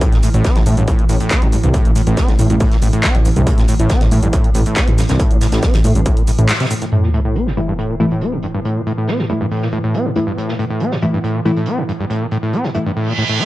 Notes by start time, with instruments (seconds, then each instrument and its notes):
Already playing: synth drone A2 E3
0.01 acid bass A2, kick, closed hi-hat, shaker
0.12 detuned saw bass A1, acid bass A#2, snare, closed hi-hat, shaker
0.23 acid bass A2, closed hi-hat, open hi-hat, shaker
0.34 detuned saw bass A1, acid bass A2, closed hi-hat, shaker
0.44 acid bass C4, kick, snare, closed hi-hat, shaker
0.56 detuned saw bass A1, acid bass A2, snare, closed hi-hat
0.66 acid bass G2, detuned saw bass A2, closed hi-hat, open hi-hat, shaker
0.77 detuned saw bass A1, acid bass G2, closed hi-hat, shaker
0.88 acid bass A2, kick, closed hi-hat, shaker
0.99 acid bass A#2, closed hi-hat
1.09 detuned saw bass A1, acid bass A2, closed hi-hat, open hi-hat, shaker
1.20 acid bass A2, closed hi-hat, shaker
1.31 acid bass C4, kick, snare, clap, closed hi-hat, shaker
1.42 detuned saw bass A1, acid bass A2, closed hi-hat
1.52 acid bass G2, closed hi-hat, open hi-hat, shaker
1.64 detuned saw bass C2, acid bass G2, closed hi-hat, shaker
1.74 acid bass A2, kick, closed hi-hat, shaker
1.85 detuned saw bass A1, acid bass A#2, closed hi-hat, shaker
1.96 acid bass A2, closed hi-hat, open hi-hat, shaker
2.07 detuned saw bass A1, acid bass A2, closed hi-hat, shaker
2.17 acid bass C4, kick, snare, closed hi-hat, shaker
2.28 detuned saw bass A1, acid bass A2, snare, closed hi-hat
2.39 acid bass G2, detuned saw bass A2, closed hi-hat, open hi-hat, shaker
2.50 detuned saw bass A1, acid bass G2, closed hi-hat, shaker
2.60 acid bass A2, kick, closed hi-hat, open hi-hat, shaker
2.72 acid bass A#2, snare, closed hi-hat
2.82 detuned saw bass A1, acid bass A2, closed hi-hat, open hi-hat, shaker
2.93 acid bass A2, closed hi-hat, shaker
3.03 acid bass C4, kick, snare, clap, closed hi-hat, shaker
3.15 detuned saw bass A1, acid bass A2, closed hi-hat
3.25 acid bass G2, closed hi-hat, open hi-hat, shaker
3.36 detuned saw bass C2, acid bass G2, closed hi-hat, shaker
3.47 acid bass A2, kick, closed hi-hat, shaker
3.58 detuned saw bass A1, acid bass A#2, snare, closed hi-hat, shaker
3.68 acid bass A2, closed hi-hat, open hi-hat, shaker
3.80 detuned saw bass A1, acid bass A2, closed hi-hat, shaker
3.89 acid bass C4, kick, snare, closed hi-hat, shaker
4.01 detuned saw bass A1, acid bass A2, snare, closed hi-hat
4.12 acid bass G2, detuned saw bass A2, closed hi-hat, open hi-hat, shaker
4.23 detuned saw bass A1, acid bass G2, closed hi-hat, shaker
4.33 acid bass A2, kick, closed hi-hat, shaker
4.44 acid bass A#2, closed hi-hat
4.54 detuned saw bass A1, acid bass A2, closed hi-hat, open hi-hat, shaker
4.66 acid bass A2, closed hi-hat, shaker
4.76 acid bass C4, kick, snare, clap, closed hi-hat, shaker
4.88 detuned saw bass A1, acid bass A2, closed hi-hat
4.98 acid bass G2, snare, closed hi-hat, open hi-hat, shaker
5.08 detuned saw bass C2, acid bass G2, snare, closed hi-hat, shaker
5.20 acid bass A2, kick, closed hi-hat, shaker
5.31 detuned saw bass A1, acid bass A#2, closed hi-hat, shaker
5.41 acid bass A2, snare, closed hi-hat, open hi-hat, shaker
5.52 detuned saw bass A1, acid bass A2, snare, closed hi-hat, shaker
5.63 acid bass C4, kick, snare, closed hi-hat, shaker
5.74 detuned saw bass A1, acid bass A2, snare, closed hi-hat, shaker
5.84 acid bass G2, detuned saw bass A2, closed hi-hat, open hi-hat, shaker
5.95 detuned saw bass A1, acid bass G2, closed hi-hat, shaker
6.06 acid bass A2, kick, closed hi-hat, shaker
6.17 acid bass A#2, closed hi-hat, shaker
6.27 acid bass A2, closed hi-hat, open hi-hat, shaker
6.38 detuned saw bass A1, acid bass A2, closed hi-hat, shaker
6.49 acid bass G2, snare, clap, closed hi-hat, shaker
6.54 snare, closed hi-hat
6.60 acid bass C3, snare, closed hi-hat
6.65 snare, closed hi-hat
6.70 acid bass A2, closed hi-hat, open hi-hat, shaker
6.82 acid bass A2, snare, closed hi-hat, shaker
6.92 acid bass A2, synth drone A2 E3, closed hi-hat, sub drop
7.03 acid bass A#2, snare
7.14 acid bass A2, closed hi-hat
7.25 acid bass A2
7.35 acid bass C4, closed hi-hat
7.46 acid bass A2, snare
7.57 acid bass G2, synth stab E3 A3 E4, closed hi-hat
7.68 acid bass G2
7.78 acid bass A2, closed hi-hat
7.90 acid bass A#2
8.00 acid bass A2, synth stab E3 A3 E4, closed hi-hat
8.11 acid bass A2, closed hi-hat
8.21 acid bass C4, closed hi-hat
8.33 acid bass A2
8.42 acid bass G2, closed hi-hat
8.54 acid bass G2
8.65 acid bass A2, closed hi-hat
8.76 acid bass A#2
8.86 acid bass A2, closed hi-hat
8.98 acid bass A2
9.08 acid bass C4, snare, closed hi-hat
9.19 acid bass A2, snare
9.29 acid bass G2, synth stab E3 A3 E4, closed hi-hat
9.41 acid bass G2
9.51 acid bass A2, open hi-hat
9.62 acid bass A#2, snare
9.71 acid bass A2, closed hi-hat
9.84 acid bass A2
9.94 acid bass C4, closed hi-hat
10.05 acid bass A2
10.15 acid bass G2, synth stab E3 A3 E4, closed hi-hat
10.27 acid bass G2
10.38 acid bass A2, closed hi-hat
10.48 acid bass A#2, snare
10.59 acid bass A2, closed hi-hat
10.70 acid bass A2
10.80 acid bass C4, closed hi-hat
10.91 acid bass A2, snare
11.01 acid bass G2, synth stab E3 A3 E4, closed hi-hat
11.13 acid bass G2
11.24 acid bass A2, closed hi-hat
11.35 acid bass A#2
11.45 acid bass A2, synth stab E3 A3 E4, closed hi-hat
11.56 acid bass A2, closed hi-hat
11.66 acid bass C4, closed hi-hat
11.78 acid bass A2
11.88 acid bass G2, closed hi-hat
12.00 acid bass G2
12.10 acid bass A2, closed hi-hat
12.21 acid bass A#2
12.31 acid bass A2, closed hi-hat
12.43 acid bass A2
12.53 acid bass C4, closed hi-hat
12.64 acid bass A2, snare
12.75 acid bass G2, synth stab E3 A3 E4, closed hi-hat, shaker
12.86 acid bass G2
12.96 acid bass A2, reverse cymbal
13.08 acid bass A#2
13.18 acid bass A2
13.29 acid bass A2
13.40 acid bass C4